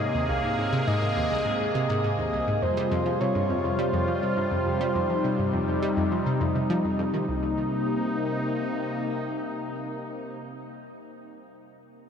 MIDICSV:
0, 0, Header, 1, 4, 480
1, 0, Start_track
1, 0, Key_signature, -3, "minor"
1, 0, Tempo, 582524
1, 240, Time_signature, 4, 2, 24, 8
1, 9965, End_track
2, 0, Start_track
2, 0, Title_t, "Soft synth lead"
2, 0, Program_c, 0, 80
2, 0, Note_on_c, 0, 75, 108
2, 206, Note_off_c, 0, 75, 0
2, 241, Note_on_c, 0, 77, 119
2, 720, Note_on_c, 0, 75, 113
2, 732, Note_off_c, 0, 77, 0
2, 1676, Note_off_c, 0, 75, 0
2, 1680, Note_on_c, 0, 75, 102
2, 2160, Note_on_c, 0, 72, 101
2, 2172, Note_off_c, 0, 75, 0
2, 2638, Note_on_c, 0, 73, 98
2, 2651, Note_off_c, 0, 72, 0
2, 3120, Note_on_c, 0, 72, 91
2, 3133, Note_off_c, 0, 73, 0
2, 5520, Note_off_c, 0, 72, 0
2, 9965, End_track
3, 0, Start_track
3, 0, Title_t, "Analog synth pad"
3, 0, Program_c, 1, 89
3, 0, Note_on_c, 1, 48, 79
3, 0, Note_on_c, 1, 58, 72
3, 0, Note_on_c, 1, 68, 86
3, 2126, Note_off_c, 1, 58, 0
3, 2126, Note_off_c, 1, 68, 0
3, 2127, Note_off_c, 1, 48, 0
3, 2158, Note_on_c, 1, 48, 79
3, 2158, Note_on_c, 1, 65, 88
3, 2159, Note_on_c, 1, 55, 77
3, 4060, Note_off_c, 1, 65, 0
3, 4078, Note_on_c, 1, 63, 89
3, 5966, Note_off_c, 1, 48, 0
3, 5966, Note_off_c, 1, 55, 0
3, 5980, Note_off_c, 1, 63, 0
3, 5997, Note_on_c, 1, 58, 75
3, 5998, Note_on_c, 1, 63, 84
3, 5999, Note_on_c, 1, 48, 80
3, 8545, Note_off_c, 1, 58, 0
3, 8545, Note_off_c, 1, 63, 0
3, 8546, Note_off_c, 1, 48, 0
3, 9965, End_track
4, 0, Start_track
4, 0, Title_t, "Synth arpeggio sound"
4, 0, Program_c, 2, 84
4, 1, Note_on_c, 2, 44, 78
4, 60, Note_off_c, 2, 44, 0
4, 120, Note_on_c, 2, 39, 76
4, 179, Note_off_c, 2, 39, 0
4, 240, Note_on_c, 2, 36, 78
4, 299, Note_off_c, 2, 36, 0
4, 361, Note_on_c, 2, 44, 75
4, 419, Note_off_c, 2, 44, 0
4, 480, Note_on_c, 2, 44, 76
4, 539, Note_off_c, 2, 44, 0
4, 599, Note_on_c, 2, 48, 102
4, 659, Note_off_c, 2, 48, 0
4, 721, Note_on_c, 2, 44, 105
4, 780, Note_off_c, 2, 44, 0
4, 841, Note_on_c, 2, 44, 82
4, 899, Note_off_c, 2, 44, 0
4, 962, Note_on_c, 2, 39, 83
4, 1020, Note_off_c, 2, 39, 0
4, 1079, Note_on_c, 2, 36, 75
4, 1139, Note_off_c, 2, 36, 0
4, 1199, Note_on_c, 2, 44, 76
4, 1259, Note_off_c, 2, 44, 0
4, 1321, Note_on_c, 2, 44, 76
4, 1380, Note_off_c, 2, 44, 0
4, 1442, Note_on_c, 2, 48, 98
4, 1500, Note_off_c, 2, 48, 0
4, 1562, Note_on_c, 2, 44, 103
4, 1620, Note_off_c, 2, 44, 0
4, 1682, Note_on_c, 2, 44, 87
4, 1740, Note_off_c, 2, 44, 0
4, 1802, Note_on_c, 2, 39, 77
4, 1860, Note_off_c, 2, 39, 0
4, 1922, Note_on_c, 2, 36, 75
4, 1980, Note_off_c, 2, 36, 0
4, 2042, Note_on_c, 2, 44, 79
4, 2100, Note_off_c, 2, 44, 0
4, 2161, Note_on_c, 2, 41, 78
4, 2220, Note_off_c, 2, 41, 0
4, 2283, Note_on_c, 2, 55, 97
4, 2341, Note_off_c, 2, 55, 0
4, 2402, Note_on_c, 2, 41, 104
4, 2460, Note_off_c, 2, 41, 0
4, 2520, Note_on_c, 2, 53, 75
4, 2579, Note_off_c, 2, 53, 0
4, 2642, Note_on_c, 2, 48, 88
4, 2700, Note_off_c, 2, 48, 0
4, 2762, Note_on_c, 2, 43, 79
4, 2820, Note_off_c, 2, 43, 0
4, 2883, Note_on_c, 2, 41, 82
4, 2940, Note_off_c, 2, 41, 0
4, 3002, Note_on_c, 2, 41, 78
4, 3060, Note_off_c, 2, 41, 0
4, 3121, Note_on_c, 2, 55, 99
4, 3180, Note_off_c, 2, 55, 0
4, 3240, Note_on_c, 2, 41, 98
4, 3299, Note_off_c, 2, 41, 0
4, 3359, Note_on_c, 2, 53, 73
4, 3419, Note_off_c, 2, 53, 0
4, 3482, Note_on_c, 2, 48, 78
4, 3540, Note_off_c, 2, 48, 0
4, 3599, Note_on_c, 2, 43, 90
4, 3659, Note_off_c, 2, 43, 0
4, 3719, Note_on_c, 2, 41, 77
4, 3779, Note_off_c, 2, 41, 0
4, 3840, Note_on_c, 2, 41, 76
4, 3899, Note_off_c, 2, 41, 0
4, 3962, Note_on_c, 2, 55, 104
4, 4020, Note_off_c, 2, 55, 0
4, 4081, Note_on_c, 2, 41, 99
4, 4139, Note_off_c, 2, 41, 0
4, 4201, Note_on_c, 2, 53, 77
4, 4259, Note_off_c, 2, 53, 0
4, 4320, Note_on_c, 2, 48, 74
4, 4379, Note_off_c, 2, 48, 0
4, 4442, Note_on_c, 2, 43, 76
4, 4500, Note_off_c, 2, 43, 0
4, 4561, Note_on_c, 2, 41, 86
4, 4620, Note_off_c, 2, 41, 0
4, 4680, Note_on_c, 2, 41, 82
4, 4739, Note_off_c, 2, 41, 0
4, 4800, Note_on_c, 2, 55, 107
4, 4859, Note_off_c, 2, 55, 0
4, 4920, Note_on_c, 2, 41, 99
4, 4979, Note_off_c, 2, 41, 0
4, 5040, Note_on_c, 2, 53, 77
4, 5099, Note_off_c, 2, 53, 0
4, 5160, Note_on_c, 2, 48, 80
4, 5219, Note_off_c, 2, 48, 0
4, 5280, Note_on_c, 2, 41, 98
4, 5339, Note_off_c, 2, 41, 0
4, 5401, Note_on_c, 2, 48, 84
4, 5460, Note_off_c, 2, 48, 0
4, 5520, Note_on_c, 2, 53, 106
4, 5579, Note_off_c, 2, 53, 0
4, 5641, Note_on_c, 2, 41, 77
4, 5729, Note_off_c, 2, 41, 0
4, 5761, Note_on_c, 2, 41, 101
4, 5796, Note_off_c, 2, 41, 0
4, 5882, Note_on_c, 2, 51, 83
4, 5917, Note_off_c, 2, 51, 0
4, 6003, Note_on_c, 2, 36, 89
4, 6224, Note_off_c, 2, 36, 0
4, 9965, End_track
0, 0, End_of_file